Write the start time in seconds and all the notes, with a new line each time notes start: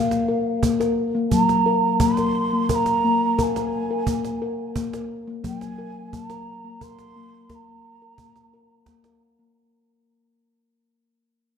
Already playing: A#3 F5
0.11 cajon slap
0.28 A#4, cajon slap
0.63 A#3, cajon bass
0.80 A#4, cajon slap
1.15 A#3
1.31 F#3 A#3 A#5, cajon bass
1.49 cajon slap
1.66 A#4, cajon slap
2.00 A#3 C6, cajon bass
2.17 A#4, cajon slap
2.53 A#3
2.69 A#4 C6, cajon bass
2.75 A#5
2.86 cajon slap
3.04 A#3
3.21 cajon slap
3.38 A#3 A#4 A#5, cajon bass
3.43 G#5
3.56 A#3, cajon slap
3.73 cajon slap
3.91 A#4
4.07 A#3, cajon bass
4.25 cajon slap
4.42 A#4
4.76 A#3, cajon bass
4.93 A#4, cajon slap
5.27 A#3, cajon slap
5.44 F#3 A#3 G5, cajon bass
5.60 G#5, cajon slap
5.78 A#4, cajon slap
6.13 A#3 A5, cajon bass
6.27 A#4 A#5, cajon slap
6.65 A#3
6.81 A#4 C6, cajon bass
6.99 cajon slap
7.16 A#3
7.50 A#3 A#4 C6, cajon bass, cajon slap
7.54 A#5
7.68 A#3
7.84 cajon slap
8.01 A#4, cajon slap
8.18 A#3, cajon bass
8.36 cajon slap
8.53 A#4, cajon slap
8.86 A#3, cajon bass, cajon slap
9.04 A#4, cajon slap
9.39 A#3